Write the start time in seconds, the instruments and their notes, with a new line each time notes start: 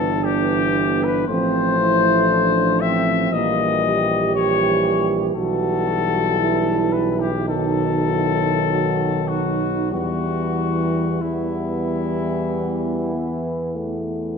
Already playing: tuba G1, trombone E3, euphonium B3, french horn section D4, flugelhorn A4
0.24 trombone E3, euphonium B3, flugelhorn G4
1.04 flugelhorn B4
1.28 tuba A1, trombone F3, euphonium A3, french horn section C4, flugelhorn C5
1.80 french horn section E4
2.30 french horn section D4
2.81 french horn section C4, flugelhorn E5
3.32 tuba A#1, trombone E3, euphonium G3, french horn section A#3, flugelhorn D#5
3.84 french horn section G4
4.35 trombone E3, euphonium G3, flugelhorn C#5
5.35 tuba B1, trombone E3, euphonium G3, french horn section F#4, flugelhorn A4
6.40 french horn section E4
6.92 flugelhorn B4
7.20 flugelhorn G4
7.48 trombone D#3, euphonium F#3, french horn section D#4, flugelhorn A4
8.08 french horn section E4
8.69 french horn section F#4
9.28 french horn section D#4, flugelhorn F#4
9.91 tuba E2, trombone E3, euphonium G3, french horn section B3, flugelhorn F#4
11.21 trombone E3, euphonium G3, flugelhorn E4
13.14 euphonium B3
13.75 euphonium A3